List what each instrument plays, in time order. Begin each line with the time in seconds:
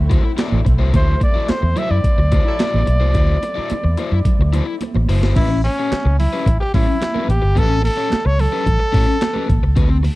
Already playing: fingered electric bass D2, string section F#3 A3 C4 E4
0.10 overdriven electric guitar E4 F#4 C5, kick, closed hi-hat, muted conga
0.24 muted overdriven electric guitar stroke
0.37 overdriven electric guitar E4 F#4 D5, snare, clap, closed hi-hat, high conga
0.52 fingered electric bass A1, high conga
0.65 fingered electric bass B1, muted overdriven electric guitar stroke, kick, closed hi-hat
0.79 fingered electric bass C2, overdriven electric guitar E4 F#4 C5
0.93 fingered electric bass D2, overdriven electric guitar E4 F#4 C5, trumpet C5, kick, closed hi-hat, muted conga
1.20 trumpet D5, muted overdriven electric guitar stroke, kick, closed hi-hat, muted conga
1.34 overdriven electric guitar E4 F#4 D5, muted fingered electric bass stroke
1.49 trumpet C5, muted fingered electric bass stroke, snare, clap, closed hi-hat, high conga
1.62 fingered electric bass E2, muted overdriven electric guitar stroke
1.76 overdriven electric guitar E4 F#4 C5, trumpet E5, closed hi-hat, low conga
1.91 fingered electric bass F#2, trumpet D5, muted overdriven electric guitar stroke
2.04 muted fingered electric bass stroke, kick, closed hi-hat
2.18 fingered electric bass D2, muted overdriven electric guitar stroke
2.32 overdriven electric guitar E4 F#4 C5, kick, closed hi-hat, muted conga
2.46 horn section F#3 E4 A4, muted overdriven electric guitar stroke
2.59 overdriven electric guitar E4 F#4 D5, snare, clap, closed hi-hat, high conga
2.74 fingered electric bass A1, high conga
2.86 fingered electric bass B1, muted overdriven electric guitar stroke, closed hi-hat
3.00 fingered electric bass C2, overdriven electric guitar E4 F#4 C5
3.14 fingered electric bass D2, overdriven electric guitar E4 F#4 C5, kick, closed hi-hat, muted conga
3.43 muted overdriven electric guitar stroke, closed hi-hat, muted conga
3.55 overdriven electric guitar E4 F#4 D5, muted fingered electric bass stroke
3.70 muted fingered electric bass stroke, closed hi-hat, high conga
3.84 fingered electric bass E2, muted overdriven electric guitar stroke
3.97 overdriven electric guitar E4 F#4 C5, closed hi-hat
4.12 fingered electric bass F#2, muted overdriven electric guitar stroke
4.25 muted fingered electric bass stroke, kick, closed hi-hat, low conga
4.39 fingered electric bass D2, muted overdriven electric guitar stroke
4.53 overdriven electric guitar E4 F#4 C5, closed hi-hat, muted conga
4.67 muted overdriven electric guitar stroke
4.81 muted overdriven electric guitar stroke, closed hi-hat, high conga
4.94 fingered electric bass A1, muted overdriven electric guitar stroke, high conga
5.09 fingered electric bass F#1, overdriven electric guitar E4 F#4 C5, open hi-hat
5.22 fingered electric bass G1, overdriven electric guitar E4 F#4 C5, snare
5.35 fingered electric bass A1, overdriven electric guitar C#4 G4 B4, trumpet E4, kick, closed hi-hat, crash, muted conga
5.52 muted overdriven electric guitar stroke
5.64 trumpet C#4, muted overdriven electric guitar stroke, open hi-hat, muted conga
5.79 overdriven electric guitar C#4 G4 C#5
5.92 muted overdriven electric guitar stroke, muted fingered electric bass stroke, snare, clap, closed hi-hat, high conga
6.05 fingered electric bass C#2, muted overdriven electric guitar stroke
6.19 trumpet E4, open hi-hat, low conga
6.33 overdriven electric guitar C#4 G4 B4
6.46 fingered electric bass A1, muted overdriven electric guitar stroke, kick, closed hi-hat
6.60 trumpet G4, muted overdriven electric guitar stroke
6.74 fingered electric bass A2, overdriven electric guitar C#4 G4 C#5, trumpet E4, kick, open hi-hat, muted conga, low conga
6.88 muted overdriven electric guitar stroke
7.01 muted overdriven electric guitar stroke, snare, clap, closed hi-hat, high conga
7.15 overdriven electric guitar C#4 G4 B4, high conga
7.29 fingered electric bass A1, trumpet G4, muted overdriven electric guitar stroke, closed hi-hat
7.42 fingered electric bass G1, muted overdriven electric guitar stroke
7.55 fingered electric bass A1, overdriven electric guitar C#4 G4 B4, trumpet A4, kick, closed hi-hat, muted conga
7.70 muted overdriven electric guitar stroke
7.82 trumpet A4, muted overdriven electric guitar stroke, open hi-hat, muted conga
7.97 overdriven electric guitar C#4 G4 C#5
8.10 muted overdriven electric guitar stroke, muted fingered electric bass stroke, snare, clap, closed hi-hat, high conga
8.25 fingered electric bass C#2, trumpet C#5, muted overdriven electric guitar stroke
8.39 trumpet A4, open hi-hat, low conga
8.52 overdriven electric guitar C#4 G4 B4
8.66 fingered electric bass A1, muted overdriven electric guitar stroke, kick, closed hi-hat, low conga
8.79 muted overdriven electric guitar stroke
8.92 fingered electric bass A2, overdriven electric guitar C#4 G4 C#5, kick, open hi-hat, muted conga
9.08 muted overdriven electric guitar stroke
9.21 muted overdriven electric guitar stroke, snare, clap, closed hi-hat, high conga
9.34 overdriven electric guitar C#4 G4 B4, high conga
9.48 fingered electric bass A1, muted overdriven electric guitar stroke, kick, closed hi-hat
9.63 fingered electric bass C#2, muted overdriven electric guitar stroke
9.76 fingered electric bass D2, overdriven electric guitar C4 F#4 B4, kick, closed hi-hat, muted conga
9.90 muted overdriven electric guitar stroke
10.03 muted overdriven electric guitar stroke, open hi-hat, muted conga